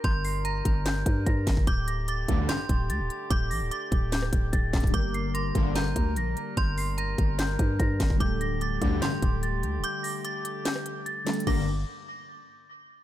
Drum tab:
CC |------------------------------------------------|------------------------------------------------|------------------------------------------------|------------------------------------------------|
HH |x-----o-----x-----x-----x-----x-----x-----x-----|x-----x-----x-----x-----x-----x-----x-----x-----|x-----o-----x-----x-----x-----x-----x-----x-x-x-|x-----x-----x-----x-----x-----x-----x-----x-----|
CP |------------------------x-----------------x-----|------------------------x-----------------------|------------------------x-----------------x-----|------------------------x-----------------------|
SD |------------------------o-----------------o-----|------------------------o-----------------------|------------------------o--r--------------o-----|------------------------o-----------------------|
BD |o-----------------o-----------o-----o-----o--o--|o-----------------o-----------o-----------------|o-----------------o-----------o-----o-----o--o--|o-----------------o-----------o-----------------|

CC |------------------------------------------------|------------------------------------------------|------------------------------------------------|x-----------------------------------------------|
HH |x-----o-----x-----x-----x-----x-----x-----x-----|x-----x-----x-----x-----x-----x-----x-----x-----|x-----o-----x-----x-----x-----x-----x-----x-x-x-|------------------------------------------------|
CP |------------------------x-----------------x-----|------------------------x-----------------------|------------------------x-----------------x-----|------------------------------------------------|
SD |------------------------o-----------------o-----|------------------------o-----------------------|------------------------o--r--------------o-----|------------------------------------------------|
BD |o-----------------o-----------o-----o-----o--o--|o-----------------o-----------o-----------------|------------------------------------------------|o-----------------------------------------------|